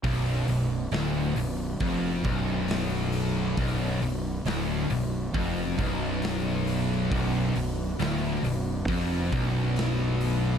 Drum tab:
HH |oooooooo|oooooooo|oooooooo|
SD |--o---o-|--o---o-|--o---o-|
BD |o---oo--|o---oo--|o---oo--|